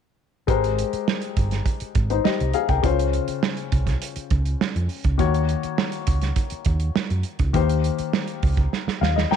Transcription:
0.47 G#1 G#3 G4 A#4 C5, kick, closed hi-hat
0.64 closed hi-hat
0.79 closed hi-hat
0.93 muted fingered electric bass stroke, closed hi-hat
1.08 snare
1.22 closed hi-hat
1.37 G1, kick, closed hi-hat
1.51 snare, closed hi-hat
1.66 kick, closed hi-hat
1.80 muted fingered electric bass stroke, closed hi-hat
1.95 G#1, kick, closed hi-hat
2.10 D#4 C5, closed hi-hat
2.24 G4 D#5, muted fingered electric bass stroke, snare
2.40 C2, closed hi-hat
2.53 G#4 F5, closed hi-hat
2.69 C2 A#4 G5, kick, closed hi-hat
2.83 C#2 C#3 C#4 F4 C5, kick, closed hi-hat
2.99 closed hi-hat
3.13 closed hi-hat
3.28 muted fingered electric bass stroke, closed hi-hat
3.43 snare
3.57 closed hi-hat
3.72 C2, kick, closed hi-hat
3.87 kick, snare, closed hi-hat
4.02 closed hi-hat
4.16 muted fingered electric bass stroke, closed hi-hat
4.30 C#2, kick, closed hi-hat
4.45 closed hi-hat
4.61 snare
4.76 F2, closed hi-hat
4.89 open hi-hat
5.04 C#2, kick, closed hi-hat
5.18 D#2 D#3 A#3 F#4 C#5, kick, closed hi-hat
5.34 closed hi-hat
5.49 closed hi-hat
5.63 muted fingered electric bass stroke, closed hi-hat
5.78 snare
5.92 closed hi-hat
6.07 C#2, kick, closed hi-hat
6.21 snare, closed hi-hat
6.36 kick, closed hi-hat
6.50 muted fingered electric bass stroke, closed hi-hat
6.65 D#2, kick, closed hi-hat
6.80 closed hi-hat
6.96 muted fingered electric bass stroke, snare
7.10 F#2, closed hi-hat
7.23 closed hi-hat
7.39 C#2, kick, closed hi-hat
7.53 D#2 D#3 A#3 G4 C5, kick, closed hi-hat
7.70 closed hi-hat
7.84 closed hi-hat
7.99 muted fingered electric bass stroke, closed hi-hat
8.13 snare
8.28 closed hi-hat
8.43 C#2, kick, open hi-hat
8.57 kick, closed hi-hat
8.73 snare
8.87 muted fingered electric bass stroke, snare
9.01 D#2 F5, snare
9.16 D#5, snare
9.31 G5 A#5, muted fingered electric bass stroke, snare

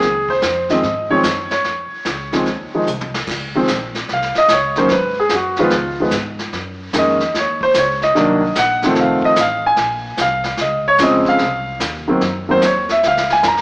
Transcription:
Already playing: G#4
0.01 C#2, brush sweep, snare
0.29 C5, kick
0.42 F2, snare, hi-hat pedal
0.69 D#3 F3 G#3 C4 D#5, snare
0.83 G#2, brush sweep, snare
1.10 D#3 F3 G#3 C4 C#5
1.23 F#2, snare, hi-hat pedal
1.50 C#5, snare
1.64 F2, brush sweep, snare
1.93 muted upright bass stroke
2.05 C#2, snare, hi-hat pedal
2.32 D#3 F3 G#3 C4, snare
2.46 D#2, brush sweep, snare
2.73 D#3 F3 G#3 D#4, muted upright bass stroke
2.87 C2, hi-hat pedal
3.01 mid tom
3.14 snare
3.27 C#2, brush sweep, kick, snare, crash
3.55 D#3 F3 G#3 C4
3.68 A#1, snare, hi-hat pedal
3.95 snare
4.08 C2, brush sweep, snare
4.13 F5
4.22 snare
4.35 D#5, muted upright bass stroke, snare
4.48 C#2 C#5, snare, hi-hat pedal
4.75 D#3 F#3 A#3 C#4 C5, snare
4.88 G#2, brush sweep, snare
4.93 B4
5.20 G#4
5.29 F#2, snare, hi-hat pedal
5.35 F#4
5.56 D#3 F3 G#3 F4, snare
5.60 B3
5.70 C#2, brush sweep, snare
6.00 D#3 F3 G#3 B3
6.11 G#2, snare, hi-hat pedal
6.39 snare
6.53 F#2, brush sweep, snare
6.93 F2 D#3 G#3 A#3 C#4, snare, hi-hat pedal
6.98 D#5
7.20 snare
7.34 D#2 C#5, brush sweep, snare
7.61 C5, kick
7.74 C#2 C#5, snare, hi-hat pedal
8.02 D#5, snare
8.15 C2 D#3 F#3 A#3 D4, brush sweep, snare
8.55 A#1 F#5, snare, hi-hat pedal
8.82 D#3 F3 A3 C4, snare
8.95 F1, brush sweep, snare
9.01 F5
9.22 D#5, muted upright bass stroke, kick
9.36 A1, snare, hi-hat pedal
9.41 F5
9.66 G#5
9.76 A#1, brush sweep, snare
10.17 C2 F5, snare, hi-hat pedal
10.44 snare
10.57 C#2, brush sweep, snare
10.61 D#5
10.88 C#5
10.98 F2 C#3 F3 G#3 C4, snare, hi-hat pedal
11.03 D#5
11.25 F5, muted upright bass stroke, kick, snare
11.38 C2, brush sweep, snare
11.80 D#2, snare, hi-hat pedal
12.08 D#3 F#3 A#3 C4
12.21 F#2, brush sweep, snare
12.49 D#3 F#3 A#3 C4 C5
12.61 D#2 C#5, snare, hi-hat pedal
12.89 E5, snare
13.03 C#2, brush sweep, snare
13.08 F5
13.17 snare
13.30 G#5, snare
13.43 F#2, snare, hi-hat pedal
13.48 A#5
13.57 snare

